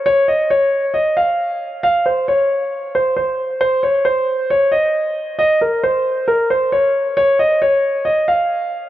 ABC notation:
X:1
M:4/4
L:1/8
Q:1/4=135
K:Dblyd
V:1 name="Grand piano"
d e d2 e f3 | f c d3 c c2 | c d c2 d e3 | e B c2 B c d2 |
d e d2 e f3 |]